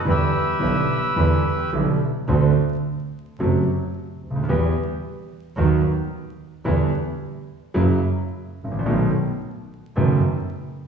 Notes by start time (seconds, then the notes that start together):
0.05 E2 D3 E3 G3 B3 E4
0.09 G4 B4 E5
0.59 B1 B2 D3 G3 B3 E4
1.16 E2 D3 E3 G3 B3 E4
1.72 B1 B2 D3 G3 B3 E4
2.28 D2 D3 A3 C4 F#4
3.40 F#1 F#2 C3 F#3 A3 F#4
4.22 D2
4.30 C#2
4.36 D2
4.43 D#2
4.48 E2 E3 G3 B3 G4
5.57 D#2 D#3 F#3 B3 F#4
6.65 E2 D3 E3 G3 B3 E4
7.74 F#1 F#2 C#3 F#3 A#3 E4
8.57 A1
8.64 G#1
8.71 A1
8.79 A#1
8.85 B1 B2 D#3 A3 B3 F#4
9.96 F#1 F#2 D#3 A3 B3 F#4